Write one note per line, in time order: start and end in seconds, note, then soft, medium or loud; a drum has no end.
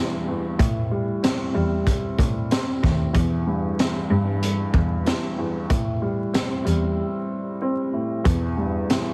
0.00 0.28 E2 medium
0.00 0.61 G2 medium
0.00 0.61 E3 medium
0.28 0.60 E2 medium
0.59 1.87 A2 medium
0.59 1.08 A2 loud
0.59 kick loud
0.59 closed hi-hat medium
0.91 1.53 G3 medium
1.23 2.49 C4 medium
1.23 snare loud
1.23 closed hi-hat medium
1.54 2.04 E2 medium
1.54 2.82 G3 medium
1.87 kick medium
1.87 closed hi-hat medium
2.19 2.43 A2 medium
2.19 kick medium
2.19 closed hi-hat medium
2.51 3.15 C4 medium
2.51 snare loud
2.51 closed hi-hat medium
2.82 3.08 D#2 medium
2.82 3.15 A2 medium
2.82 kick medium
2.82 snare soft
3.13 4.42 E2 medium
3.13 3.64 E2 loud
3.13 kick loud
3.13 closed hi-hat medium
3.47 4.09 G2 medium
3.79 5.04 E3 medium
3.79 snare loud
3.79 closed hi-hat medium
4.10 5.38 G2 medium
4.10 4.59 G2 loud
4.43 closed hi-hat medium
4.74 4.98 E2 medium
4.74 kick medium
5.05 5.70 E3 medium
5.05 snare loud
5.05 closed hi-hat medium
5.39 5.70 E2 medium
5.69 6.97 A2 medium
5.69 6.19 A2 loud
5.69 kick loud
5.69 closed hi-hat medium
6.02 6.63 G3 medium
6.34 7.60 C4 medium
6.34 snare loud
6.34 closed hi-hat medium
6.65 6.90 E2 medium
6.65 7.93 G3 medium
6.65 closed hi-hat medium
7.62 8.25 C4 medium
7.93 8.25 A2 medium
8.24 9.13 E2 medium
8.24 8.74 E2 loud
8.24 kick loud
8.24 closed hi-hat medium
8.58 9.13 G2 medium
8.90 9.13 E3 medium
8.90 snare loud
8.90 closed hi-hat medium